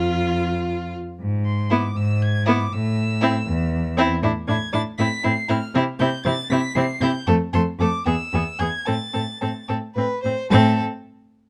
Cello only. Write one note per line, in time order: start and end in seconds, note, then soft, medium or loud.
0.00 0.95 F2 medium
1.20 1.83 G#2 medium
1.96 2.59 G#2 medium
2.71 3.34 A2 medium
3.46 4.10 E2 loud
4.22 4.30 A2 loud
4.48 4.56 A2 loud
4.73 4.81 A2 medium
4.98 5.06 A2 medium
5.24 5.32 A2 medium
5.49 5.57 A2 medium
5.74 5.82 C3 loud
6.00 6.08 C3 loud
6.25 6.33 C3 loud
6.50 6.58 C3 loud
6.75 6.83 C3 loud
7.01 7.09 C3 loud
7.27 7.35 F2 loud
7.53 7.61 F2 loud
7.79 7.87 F2 medium
8.06 8.14 E2 medium
8.33 8.41 E2 medium
8.60 8.68 E2 medium
8.88 8.96 A2 medium
9.15 9.23 A2 medium
9.42 9.50 A2 medium
9.69 9.77 A2 medium
9.96 10.04 A2 medium
10.24 10.32 A2 medium
10.50 10.80 A2 loud